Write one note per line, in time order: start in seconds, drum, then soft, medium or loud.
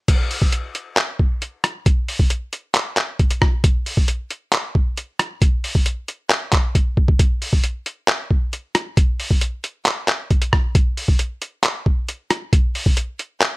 0.08 kick loud
0.08 closed hi-hat medium
0.08 crash loud
0.31 open hi-hat medium
0.42 kick medium
0.52 closed hi-hat medium
0.75 closed hi-hat medium
0.97 clap loud
0.97 closed hi-hat medium
1.19 kick medium
1.42 closed hi-hat medium
1.64 cross-stick medium
1.64 closed hi-hat medium
1.86 kick loud
1.86 closed hi-hat medium
2.08 open hi-hat medium
2.19 kick medium
2.30 closed hi-hat medium
2.53 closed hi-hat medium
2.75 clap loud
2.75 closed hi-hat medium
2.97 clap medium
2.97 closed hi-hat medium
3.19 kick loud
3.19 closed hi-hat medium
3.31 closed hi-hat medium
3.42 kick loud
3.42 cross-stick medium
3.64 kick loud
3.64 closed hi-hat medium
3.86 open hi-hat medium
3.97 kick medium
4.08 closed hi-hat medium
4.31 closed hi-hat medium
4.53 clap loud
4.53 closed hi-hat medium
4.75 kick medium
4.97 closed hi-hat medium
5.19 cross-stick loud
5.19 closed hi-hat medium
5.42 kick loud
5.42 closed hi-hat medium
5.64 open hi-hat medium
5.75 kick medium
5.86 closed hi-hat medium
6.08 closed hi-hat medium
6.30 clap loud
6.30 closed hi-hat medium
6.52 kick medium
6.52 clap medium
6.52 closed hi-hat medium
6.75 kick loud
6.75 closed hi-hat medium
6.97 kick loud
7.08 kick loud
7.19 kick loud
7.19 closed hi-hat medium
7.42 open hi-hat medium
7.53 kick medium
7.64 closed hi-hat medium
7.86 closed hi-hat medium
8.08 clap loud
8.08 closed hi-hat medium
8.31 kick medium
8.53 closed hi-hat medium
8.75 cross-stick medium
8.75 closed hi-hat medium
8.97 kick loud
8.97 closed hi-hat medium
9.20 open hi-hat medium
9.31 kick medium
9.41 closed hi-hat medium
9.64 closed hi-hat medium
9.86 clap loud
9.86 closed hi-hat medium
10.08 clap loud
10.08 closed hi-hat medium
10.31 kick loud
10.31 closed hi-hat soft
10.42 closed hi-hat medium
10.53 kick loud
10.53 cross-stick medium
10.75 kick loud
10.75 closed hi-hat medium
10.97 open hi-hat medium
11.08 kick medium
11.19 closed hi-hat medium
11.42 closed hi-hat medium
11.64 clap loud
11.64 closed hi-hat medium
11.86 kick medium
12.09 closed hi-hat medium
12.30 cross-stick medium
12.30 closed hi-hat medium
12.53 kick loud
12.53 closed hi-hat medium
12.75 open hi-hat medium
12.86 kick medium
12.97 closed hi-hat medium
13.19 closed hi-hat medium
13.42 clap loud
13.42 closed hi-hat medium